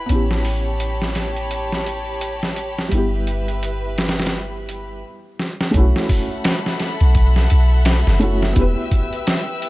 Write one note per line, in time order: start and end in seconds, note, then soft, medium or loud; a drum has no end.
0.00 4.99 B5 medium
0.06 2.89 A1 medium
0.06 2.87 B3 medium
0.06 2.88 C#4 medium
0.06 5.00 G4 medium
0.06 2.89 C#5 medium
0.06 2.89 A5 medium
0.06 closed hi-hat medium
0.11 2.89 E4 medium
0.11 2.91 G4 medium
0.31 snare soft
0.45 open hi-hat medium
0.80 closed hi-hat medium
1.02 snare soft
1.15 snare soft
1.15 closed hi-hat medium
1.36 closed hi-hat soft
1.51 closed hi-hat medium
1.72 snare soft
1.86 closed hi-hat medium
2.21 closed hi-hat medium
2.43 snare soft
2.56 closed hi-hat medium
2.79 snare soft
2.89 5.04 G1 medium
2.89 5.02 G3 medium
2.89 5.04 B3 medium
2.89 5.02 B4 medium
2.89 5.02 E5 medium
2.89 closed hi-hat medium
2.94 5.05 E4 medium
2.94 5.07 G4 medium
3.27 closed hi-hat medium
3.48 closed hi-hat soft
3.63 closed hi-hat medium
3.98 snare medium
3.98 closed hi-hat medium
4.08 snare medium
4.08 closed hi-hat medium
4.19 snare medium
4.19 closed hi-hat medium
4.26 snare medium
4.26 closed hi-hat medium
4.69 closed hi-hat medium
5.39 snare soft
5.61 snare medium
5.71 5.93 B1 loud
5.71 8.16 A3 medium
5.71 8.18 C#4 medium
5.71 8.54 A4 medium
5.71 9.69 E5 medium
5.71 8.54 F#5 medium
5.71 8.54 B5 medium
5.71 kick loud
5.71 closed hi-hat medium
5.77 8.19 E4 medium
5.77 8.21 F#4 medium
5.96 snare medium
6.09 kick medium
6.09 open hi-hat medium
6.44 snare loud
6.44 closed hi-hat medium
6.66 snare soft
6.80 snare soft
6.80 closed hi-hat medium
7.00 7.48 B1 loud
7.00 closed hi-hat soft
7.15 kick loud
7.15 closed hi-hat medium
7.36 snare soft
7.50 8.03 B1 medium
7.50 closed hi-hat medium
7.85 snare loud
7.85 closed hi-hat medium
8.07 8.54 F#1 medium
8.07 snare soft
8.20 8.52 A3 medium
8.20 8.53 C#4 medium
8.20 8.54 E4 medium
8.20 closed hi-hat medium
8.24 8.54 F#4 loud
8.42 snare medium
8.53 8.75 E1 medium
8.53 9.69 B3 medium
8.53 9.69 E4 medium
8.53 9.69 B4 medium
8.53 9.69 G5 medium
8.53 9.69 E6 medium
8.53 kick loud
8.53 closed hi-hat medium
8.58 9.69 G4 medium
8.58 9.69 B4 medium
8.91 kick medium
8.91 closed hi-hat medium
9.13 closed hi-hat soft
9.27 snare loud
9.27 closed hi-hat medium
9.62 closed hi-hat medium